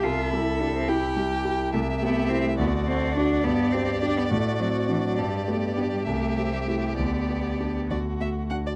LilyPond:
<<
  \new Staff \with { instrumentName = "Violin" } { \time 6/8 \key a \minor \tempo 4. = 69 e''4. g''4. | \key g \major e''4. d''4.~ | d''2.~ | d''4. e''4. |
d''4. d''8 e''8 fis''16 d''16 | }
  \new Staff \with { instrumentName = "Violin" } { \time 6/8 \key a \minor a'4. g'4. | \key g \major g'4. fis'4. | g'4. fis'4. | g'2.~ |
g'4. fis'4 r8 | }
  \new Staff \with { instrumentName = "Grand piano" } { \time 6/8 \key a \minor c,8 <g g'>8 <e' g'>8 <e' g'>8 <g g'>8 <e' g'>8 | \key g \major c,8 <a g'>8 <e' g'>8 d,8 <a fis'>8 <d' fis'>8 | g,8 <b g'>8 <d' g'>8 a,8 <c' fis'>8 <d' fis'>8 | g,8 <b g'>8 <d' g'>8 c,8 <c' g'>8 <e' g'>8 |
d,8 <b g'>8 <d' g'>8 d,8 <a fis'>8 <d' fis'>8 | }
  \new Staff \with { instrumentName = "Cello" } { \time 6/8 \key a \minor f'8 e'8 d'16 c'16 e'8 r4 | \key g \major a8 b8 c'16 a16 b8 c'8 d'8 | b8 c'8 d'16 b16 a8 fis8 e16 fis16 | g8 a8 b16 g16 a8. g16 a8 |
b4. r4. | }
>>